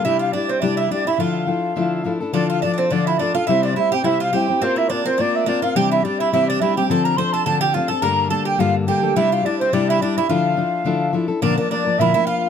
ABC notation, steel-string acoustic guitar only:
X:1
M:4/4
L:1/8
Q:"Swing" 1/4=211
K:Dm
V:1 name="Steel-string acoustic guitar"
[C,G,DEG]2 [G,DEG]2 [C,G,DEG]2 [G,DEG] [DEG] | [D,F,DEA]2 [F,DEA]2 [D,F,DEA]2 [F,DEA] [DEA] | [D,F,DFA]2 [F,DFA]2 [D,F,DFA]2 [F,DFA] [DFA] | [C,G,CEc]2 [G,CEc] [CEc] [C,G,CEc]2 [G,CEc] [CEc] |
[B,CFB]2 [B,CFB] [CFB] [B,CFB]2 [B,CFB] [CFB] | [C,E,G,CDG]2 [G,CDG]2 [C,E,G,CDG]2 [G,CDG] [G,CDG] | [D,F,CDA]2 [F,CDA]2 [D,F,CDA]2 [F,CDA] [CDA] | [G,,D,G,B,DA]2 [G,B,DA]2 [G,,D,G,B,DA]2 [G,B,DA] [G,B,DA] |
[C,G,DEG]2 [G,DEG]2 [C,G,DEG]2 [G,DEG] [DEG] | [D,F,DEA]2 [F,DEA]2 [D,F,DEA]2 [F,DEA] [DEA] | [B,,D,F,B,DB] [F,B,DB] [F,B,DB] [F,B,DB] [B,,D,F,B,DB] [F,B,DB]3 |]